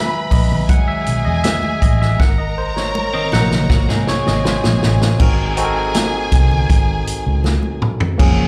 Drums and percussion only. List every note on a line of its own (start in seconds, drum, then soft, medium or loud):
0.31 kick medium
0.31 open hi-hat medium
0.31 muted conga medium
0.52 low conga medium
0.69 kick loud
0.69 closed hi-hat medium
0.69 muted conga soft
1.06 closed hi-hat medium
1.44 snare loud
1.44 closed hi-hat loud
1.44 high conga medium
1.63 high conga medium
1.82 kick medium
1.82 closed hi-hat medium
2.02 snare soft
2.20 kick loud
2.20 snare medium
2.20 muted conga soft
2.76 snare medium
2.95 high conga medium
3.32 snare medium
3.32 muted conga medium
3.51 snare medium
3.51 low conga medium
3.70 kick loud
3.70 snare medium
3.70 muted conga soft
3.89 snare medium
4.07 snare medium
4.27 snare medium
4.45 snare loud
4.45 high conga medium
4.64 snare loud
4.64 high conga medium
4.83 snare loud
5.01 snare medium
5.20 kick loud
5.20 crash medium
5.20 muted conga soft
5.57 closed hi-hat medium
5.94 snare loud
5.94 closed hi-hat loud
5.94 high conga medium
6.32 kick medium
6.32 closed hi-hat medium
6.32 muted conga medium
6.51 low conga medium
6.70 kick loud
6.70 closed hi-hat medium
6.70 muted conga soft
7.07 closed hi-hat medium
7.44 snare medium
7.44 high conga medium
7.63 high conga medium
7.82 mid tom loud
8.00 floor tom loud
8.19 kick loud
8.19 crash loud